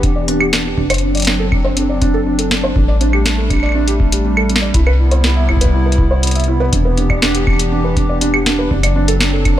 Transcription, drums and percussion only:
0.03 kick loud
0.03 closed hi-hat medium
0.28 closed hi-hat medium
0.40 claves medium
0.53 snare loud
0.53 closed hi-hat medium
0.78 kick loud
0.90 closed hi-hat medium
0.90 claves medium
0.94 closed hi-hat medium
0.98 closed hi-hat soft
1.15 closed hi-hat soft
1.17 closed hi-hat medium
1.20 closed hi-hat medium
1.22 closed hi-hat medium
1.25 snare loud
1.25 closed hi-hat medium
1.52 kick loud
1.52 claves medium
1.77 closed hi-hat medium
2.02 kick loud
2.02 closed hi-hat medium
2.39 closed hi-hat medium
2.51 snare loud
2.76 kick loud
3.01 closed hi-hat medium
3.13 claves medium
3.26 snare loud
3.26 closed hi-hat medium
3.50 kick loud
3.50 closed hi-hat soft
3.50 claves soft
3.54 claves soft
3.57 claves soft
3.60 claves soft
3.63 claves soft
3.66 claves soft
3.69 claves soft
3.72 claves soft
3.88 closed hi-hat medium
4.00 kick loud
4.12 closed hi-hat loud
4.37 claves medium
4.50 closed hi-hat soft
4.56 snare loud
4.74 kick loud
4.74 closed hi-hat medium
4.87 claves medium
5.11 closed hi-hat soft
5.24 snare loud
5.49 kick soft
5.49 claves soft
5.57 kick medium
5.61 closed hi-hat medium
5.65 kick medium
5.92 closed hi-hat medium
5.98 kick loud
6.23 closed hi-hat medium
6.27 closed hi-hat medium
6.31 closed hi-hat medium
6.35 closed hi-hat soft
6.40 closed hi-hat soft
6.44 closed hi-hat soft
6.73 kick loud
6.73 closed hi-hat medium
6.97 closed hi-hat soft
7.10 kick medium
7.10 claves medium
7.22 snare loud
7.35 closed hi-hat medium
7.47 kick loud
7.47 claves soft
7.50 claves soft
7.53 claves soft
7.56 closed hi-hat medium
7.56 claves soft
7.97 kick loud
7.97 closed hi-hat soft
8.21 closed hi-hat medium
8.34 claves medium
8.46 snare loud
8.46 closed hi-hat soft
8.71 kick loud
8.83 closed hi-hat medium
8.83 claves medium
9.08 closed hi-hat medium
9.20 snare loud
9.45 kick medium
9.45 closed hi-hat soft
9.45 claves soft

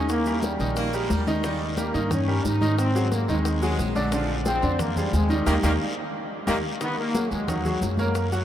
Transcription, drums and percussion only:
0.09 high bongo medium
0.09 long guiro medium
0.09 maracas medium
0.26 high bongo soft
0.26 high conga soft
0.26 maracas medium
0.42 high bongo medium
0.42 high conga medium
0.42 short guiro medium
0.42 maracas medium
0.60 high bongo soft
0.60 high conga soft
0.60 short guiro medium
0.60 maracas soft
0.76 high bongo medium
0.76 high conga soft
0.76 long guiro medium
0.76 maracas medium
0.93 high bongo soft
0.93 high conga soft
0.93 maracas medium
1.10 high bongo soft
1.10 low bongo medium
1.10 high conga medium
1.10 short guiro medium
1.10 maracas medium
1.27 high conga medium
1.27 short guiro medium
1.27 maracas soft
1.44 high bongo medium
1.44 long guiro medium
1.44 maracas medium
1.60 high bongo soft
1.60 high conga soft
1.77 high bongo medium
1.77 high conga medium
1.77 short guiro medium
1.77 maracas medium
1.94 high bongo soft
1.94 high conga soft
1.94 short guiro medium
1.94 maracas soft
2.10 high bongo medium
2.10 high conga soft
2.10 low conga medium
2.10 long guiro medium
2.10 maracas medium
2.28 high bongo soft
2.28 high conga soft
2.45 high bongo soft
2.45 low bongo medium
2.45 high conga medium
2.45 short guiro medium
2.45 maracas medium
2.61 high conga medium
2.61 short guiro medium
2.61 maracas soft
2.78 high bongo medium
2.78 high conga soft
2.78 long guiro medium
2.78 maracas medium
2.95 high bongo soft
2.95 high conga soft
2.95 maracas medium
3.12 high bongo medium
3.12 high conga medium
3.12 short guiro medium
3.12 maracas medium
3.28 high bongo soft
3.28 high conga soft
3.28 short guiro medium
3.28 maracas soft
3.45 high bongo medium
3.45 high conga soft
3.45 long guiro medium
3.45 maracas medium
3.62 high bongo soft
3.62 high conga soft
3.62 maracas medium
3.79 high bongo soft
3.79 low bongo medium
3.79 high conga medium
3.79 short guiro medium
3.79 maracas medium
3.95 high conga medium
3.95 short guiro medium
3.95 maracas soft
4.12 high bongo medium
4.12 high conga soft
4.12 long guiro medium
4.12 maracas medium
4.29 high bongo soft
4.29 high conga soft
4.45 high bongo medium
4.45 high conga loud
4.45 short guiro medium
4.45 maracas medium
4.62 high bongo soft
4.62 high conga soft
4.62 short guiro medium
4.62 maracas soft
4.79 high bongo medium
4.79 high conga soft
4.79 low conga medium
4.79 long guiro medium
4.79 maracas medium
4.96 high bongo soft
4.96 high conga soft
4.96 low conga medium
4.96 maracas medium
5.13 high bongo soft
5.13 low bongo medium
5.13 high conga medium
5.13 short guiro medium
5.13 maracas medium
5.29 high conga medium
5.29 short guiro medium
5.29 maracas soft
5.46 high bongo loud
5.46 high conga loud
5.46 long guiro loud
5.46 maracas loud
5.62 high bongo medium
5.62 high conga loud
5.62 long guiro loud
5.62 maracas loud
6.47 high bongo loud
6.47 high conga loud
6.47 long guiro medium
6.47 maracas loud
6.81 high bongo medium
6.81 high conga soft
6.81 long guiro medium
6.81 maracas medium
6.97 high bongo soft
6.97 high conga soft
7.15 high bongo medium
7.15 high conga medium
7.15 short guiro medium
7.15 maracas medium
7.31 high bongo soft
7.31 high conga soft
7.31 short guiro medium
7.31 maracas soft
7.48 high bongo medium
7.48 high conga soft
7.48 low conga medium
7.48 long guiro medium
7.48 maracas medium
7.65 high bongo soft
7.65 high conga soft
7.65 low conga medium
7.65 maracas medium
7.81 high bongo soft
7.81 low bongo medium
7.81 high conga medium
7.81 short guiro medium
7.81 maracas medium
7.97 high conga medium
7.97 short guiro medium
7.97 maracas soft
8.15 high bongo medium
8.15 high conga soft
8.15 long guiro medium
8.15 maracas medium
8.32 high bongo soft
8.32 high conga soft
8.32 maracas medium

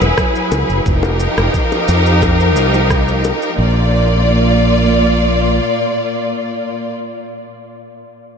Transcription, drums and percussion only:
0.01 high bongo medium
0.01 cabasa soft
0.18 kick loud
0.18 cross-stick medium
0.18 cabasa soft
0.36 cabasa soft
0.52 high bongo medium
0.52 cabasa medium
0.70 cabasa soft
0.86 kick loud
0.86 cabasa soft
1.03 high bongo medium
1.03 cabasa soft
1.20 cabasa medium
1.38 cross-stick medium
1.38 cabasa soft
1.54 kick medium
1.54 cabasa soft
1.72 high bongo medium
1.72 cabasa soft
1.88 cabasa medium
2.06 cabasa soft
2.22 kick medium
2.22 high bongo medium
2.22 cabasa soft
2.40 cabasa soft
2.56 cabasa medium
2.74 high bongo medium
2.74 cabasa soft
2.90 kick loud
2.90 cross-stick medium
2.90 cabasa soft
3.08 cabasa soft
3.24 high bongo medium
3.24 cabasa medium
3.42 cabasa soft

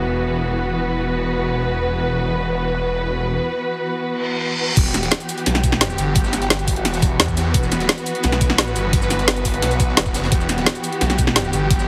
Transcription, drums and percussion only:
4.76 kick loud
4.76 closed hi-hat medium
4.76 crash loud
4.85 snare soft
4.85 shaker soft
4.94 snare soft
4.94 closed hi-hat medium
4.94 shaker medium
5.03 snare medium
5.03 closed hi-hat soft
5.11 snare loud
5.11 closed hi-hat medium
5.11 closed hi-hat loud
5.20 closed hi-hat soft
5.20 shaker soft
5.29 closed hi-hat medium
5.29 shaker medium
5.38 closed hi-hat soft
5.46 snare soft
5.46 closed hi-hat medium
5.55 snare medium
5.55 closed hi-hat soft
5.55 shaker soft
5.64 kick loud
5.64 closed hi-hat medium
5.64 shaker medium
5.72 snare medium
5.81 snare loud
5.81 closed hi-hat loud
5.90 snare soft
5.90 shaker soft
5.98 closed hi-hat medium
5.98 shaker medium
6.15 kick loud
6.15 closed hi-hat medium
6.15 closed hi-hat loud
6.24 snare medium
6.24 shaker soft
6.33 snare soft
6.33 closed hi-hat medium
6.33 shaker medium
6.41 snare medium
6.41 closed hi-hat soft
6.50 snare loud
6.50 closed hi-hat medium
6.50 closed hi-hat loud
6.59 closed hi-hat soft
6.59 shaker soft
6.68 kick medium
6.68 closed hi-hat medium
6.68 open hi-hat medium
6.68 shaker medium
6.76 closed hi-hat soft
6.85 snare soft
6.85 closed hi-hat medium
6.85 open hi-hat medium
6.94 snare soft
6.94 closed hi-hat soft
6.94 shaker soft
7.02 kick loud
7.02 closed hi-hat medium
7.02 shaker medium
7.19 snare loud
7.19 closed hi-hat loud
7.19 closed hi-hat medium
7.28 kick medium
7.28 shaker soft
7.37 snare loud
7.37 closed hi-hat medium
7.37 shaker medium
7.46 snare soft
7.54 kick loud
7.54 closed hi-hat medium
7.54 closed hi-hat loud
7.63 snare soft
7.63 shaker soft
7.71 snare soft
7.71 closed hi-hat medium
7.71 shaker medium
7.80 snare medium
7.80 closed hi-hat soft
7.89 snare loud
7.89 closed hi-hat medium
7.98 closed hi-hat soft
7.98 shaker soft
8.06 closed hi-hat medium
8.06 shaker medium
8.15 closed hi-hat soft
8.23 snare soft
8.23 closed hi-hat medium
8.32 snare soft
8.32 closed hi-hat soft
8.32 shaker soft
8.41 kick loud
8.41 closed hi-hat medium
8.41 shaker medium
8.50 snare medium
8.58 snare loud
8.58 closed hi-hat medium
8.67 snare soft
8.67 shaker soft
8.76 closed hi-hat medium
8.76 shaker medium
8.93 kick loud
8.93 closed hi-hat medium
9.02 snare medium
9.02 shaker soft
9.10 snare soft
9.10 closed hi-hat medium
9.10 shaker medium
9.19 snare soft
9.19 closed hi-hat soft
9.28 snare loud
9.28 closed hi-hat medium
9.36 closed hi-hat soft
9.36 shaker soft
9.45 kick medium
9.45 closed hi-hat medium
9.45 open hi-hat medium
9.45 shaker medium
9.54 closed hi-hat soft
9.62 snare loud
9.62 snare soft
9.62 closed hi-hat medium
9.71 snare soft
9.71 closed hi-hat soft
9.71 shaker soft
9.80 kick loud
9.80 closed hi-hat medium
9.80 shaker medium
9.89 snare soft
9.97 snare loud
9.97 closed hi-hat medium
10.05 kick medium
10.05 snare medium
10.05 shaker soft
10.14 snare loud
10.14 closed hi-hat medium
10.14 shaker medium
10.23 snare loud
10.23 closed hi-hat medium
10.32 kick loud
10.32 closed hi-hat medium
10.40 snare soft
10.40 shaker soft
10.49 snare soft
10.49 closed hi-hat medium
10.49 shaker medium
10.57 snare medium
10.57 closed hi-hat soft
10.66 snare loud
10.66 closed hi-hat medium
10.75 closed hi-hat soft
10.75 shaker soft
10.83 closed hi-hat medium
10.83 shaker medium
10.93 closed hi-hat soft
11.01 snare soft
11.01 closed hi-hat medium
11.10 snare soft
11.10 closed hi-hat soft
11.10 shaker soft
11.18 kick loud
11.18 closed hi-hat medium
11.18 shaker medium
11.27 snare medium
11.36 snare loud
11.36 closed hi-hat medium
11.45 snare soft
11.45 shaker soft
11.53 closed hi-hat medium
11.53 shaker medium
11.71 kick loud
11.71 closed hi-hat medium
11.79 snare medium
11.79 shaker soft

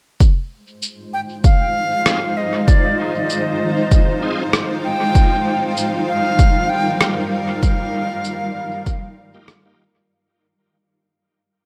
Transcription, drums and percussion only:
0.20 kick loud
0.20 cabasa soft
0.82 cabasa medium
1.44 kick loud
1.44 cabasa medium
2.06 cross-stick medium
2.06 cabasa medium
2.68 kick loud
2.68 cabasa soft
3.30 cabasa medium
3.91 kick loud
3.91 cabasa medium
4.53 cross-stick medium
4.53 cabasa soft
5.15 kick loud
5.15 cabasa soft
5.77 cabasa soft
6.39 kick loud
6.39 cabasa medium
7.01 cross-stick medium
7.01 cabasa soft
7.63 kick loud
7.63 cabasa soft
8.24 cabasa medium
8.86 kick loud
8.86 cabasa soft
9.48 cross-stick medium
9.48 cabasa soft

